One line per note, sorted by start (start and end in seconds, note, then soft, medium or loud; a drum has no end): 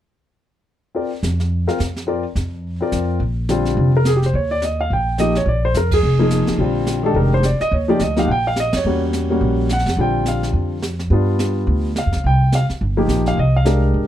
0.94 1.10 C4 soft
0.94 1.10 F4 soft
0.94 1.10 A#4 soft
0.94 1.10 D5 soft
0.94 brush sweep soft
1.23 1.67 F2 medium
1.23 snare soft
1.23 hi-hat pedal soft
1.40 snare soft
1.52 brush sweep soft
1.67 1.78 C4 medium
1.67 1.78 F4 medium
1.67 1.78 A#4 medium
1.67 1.79 F5 medium
1.67 snare soft
1.79 2.23 F2 medium
1.79 snare medium
1.79 hi-hat pedal medium
1.96 snare soft
2.07 2.22 C4 soft
2.07 2.23 F4 soft
2.07 2.23 A#4 soft
2.07 2.23 D5 medium
2.07 brush sweep soft
2.35 2.80 F2 medium
2.35 snare soft
2.35 hi-hat pedal soft
2.63 brush sweep soft
2.81 3.18 C4 medium
2.81 3.19 F4 medium
2.81 3.19 A#4 medium
2.81 3.19 D5 medium
2.92 3.18 F2 medium
2.92 snare soft
2.92 hi-hat pedal medium
3.20 3.74 A#1 medium
3.20 brush sweep soft
3.49 3.91 D3 medium
3.49 3.91 G3 medium
3.49 3.91 C4 medium
3.49 3.92 F4 medium
3.49 snare medium
3.49 hi-hat pedal medium
3.65 snare soft
3.77 4.31 F1 medium
3.77 brush sweep medium
3.97 4.06 A#4 medium
4.05 4.15 G#4 medium
4.05 snare medium
4.05 hi-hat pedal medium
4.16 4.25 G4 medium
4.22 4.34 C5 medium
4.22 snare soft
4.33 4.87 D#2 medium
4.33 4.51 C#5 medium
4.33 brush sweep soft
4.51 4.62 D5 medium
4.62 4.79 D#5 medium
4.62 snare medium
4.62 hi-hat pedal soft
4.81 4.91 F5 medium
4.90 5.44 A#1 medium
4.90 5.18 G5 medium
4.90 brush sweep medium
5.18 5.34 F3 medium
5.18 5.34 A#3 soft
5.18 5.34 D#4 soft
5.18 5.34 G4 medium
5.18 5.35 D#5 medium
5.18 snare soft
5.18 hi-hat pedal soft
5.35 5.47 C#5 medium
5.35 snare soft
5.46 5.72 A#1 medium
5.46 5.64 D5 medium
5.46 brush sweep soft
5.65 5.75 C5 medium
5.74 6.01 F2 medium
5.74 5.92 A#4 medium
5.74 snare medium
5.74 hi-hat pedal medium
5.91 6.20 G#4 medium
5.91 kick medium
5.91 ride medium
6.03 6.45 F1 medium
6.03 brush sweep medium
6.19 6.57 F3 medium
6.19 6.57 A#3 medium
6.19 6.57 D#4 medium
6.19 6.58 G#4 medium
6.31 snare medium
6.31 hi-hat pedal medium
6.47 muted upright bass stroke soft
6.47 snare soft
6.58 7.12 A#1 medium
6.58 7.01 D3 medium
6.58 7.01 G3 soft
6.58 7.01 C4 medium
6.58 7.02 F4 medium
6.58 brush sweep soft
6.87 snare medium
6.87 hi-hat pedal medium
7.03 7.41 D#3 medium
7.03 7.42 G#3 soft
7.03 7.42 D4 medium
7.03 7.42 G4 medium
7.03 7.16 A4 medium
7.14 7.57 F1 medium
7.14 7.32 A#4 medium
7.14 brush sweep medium
7.34 7.44 C5 medium
7.43 7.61 D5 medium
7.43 snare medium
7.43 hi-hat pedal medium
7.60 7.72 D#5 medium
7.60 snare soft
7.71 7.98 D#2 medium
7.71 7.89 C#5 medium
7.71 brush sweep soft
7.88 7.99 F3 medium
7.88 7.99 A#3 medium
7.88 7.99 D#4 medium
7.88 8.00 G4 medium
7.88 8.01 D5 medium
7.99 8.26 D2 medium
7.99 8.17 D#5 medium
7.99 snare medium
7.99 hi-hat pedal medium
8.16 8.27 F3 medium
8.16 8.27 A#3 medium
8.16 8.28 D#4 medium
8.16 8.28 G4 medium
8.16 8.29 F5 medium
8.16 snare soft
8.27 8.70 A#1 medium
8.27 8.29 F#5 medium
8.27 brush sweep medium
8.31 8.46 G5 medium
8.47 8.57 F5 medium
8.56 8.75 D#5 medium
8.56 snare medium
8.56 hi-hat pedal medium
8.73 8.84 F2 medium
8.73 9.01 C#5 medium
8.73 snare medium
8.73 ride medium
8.84 9.38 E2 medium
8.84 9.27 G3 medium
8.84 9.27 A#3 soft
8.84 9.28 C#4 soft
8.84 9.28 F#4 medium
8.84 brush sweep soft
9.13 snare medium
9.13 hi-hat pedal medium
9.30 9.67 G3 medium
9.30 9.68 A#3 medium
9.30 9.68 C#4 soft
9.30 9.68 F#4 medium
9.41 9.83 A#1 medium
9.41 brush sweep medium
9.69 9.98 F#5 medium
9.69 snare medium
9.69 hi-hat pedal medium
9.79 snare soft
9.86 9.96 F2 medium
9.86 snare soft
9.88 snare soft
9.97 10.51 A#1 medium
9.97 10.76 D3 medium
9.97 10.76 G3 soft
9.97 10.77 C4 soft
9.97 10.77 F4 medium
9.97 brush sweep soft
10.01 10.26 G5 medium
10.26 10.44 F5 medium
10.26 snare soft
10.26 hi-hat pedal medium
10.43 snare soft
10.53 11.08 F2 medium
10.53 brush sweep medium
10.82 snare medium
10.82 hi-hat pedal medium
10.99 snare soft
11.10 11.64 G2 medium
11.10 11.89 G3 medium
11.10 11.89 B3 soft
11.10 11.90 D4 soft
11.10 11.90 F4 medium
11.10 brush sweep soft
11.39 snare medium
11.39 hi-hat pedal soft
11.67 12.02 D2 medium
11.67 brush sweep soft
11.96 12.24 F5 medium
11.96 snare medium
11.96 hi-hat pedal medium
12.06 12.15 F2 medium
12.12 12.23 C#2 medium
12.12 snare soft
12.24 12.66 C2 medium
12.24 12.52 G5 medium
12.24 brush sweep soft
12.52 12.64 F5 medium
12.52 snare medium
12.52 hi-hat pedal soft
12.70 muted upright bass stroke soft
12.70 snare soft
12.81 13.07 G1 medium
12.81 brush sweep soft
12.97 13.35 F3 medium
12.97 13.35 A#3 medium
12.97 13.35 D#4 medium
12.97 13.35 G4 medium
13.08 13.35 A#1 medium
13.08 snare medium
13.08 hi-hat pedal medium
13.26 13.38 F5 medium
13.26 snare soft
13.37 13.91 C2 medium
13.37 13.55 D#5 medium
13.37 brush sweep soft
13.56 13.82 F5 medium
13.65 14.07 G#3 medium
13.65 14.07 D4 medium
13.65 14.07 G4 medium
13.65 14.07 A#4 medium
13.65 snare medium
13.65 hi-hat pedal soft
13.94 14.07 G1 medium
13.94 brush sweep medium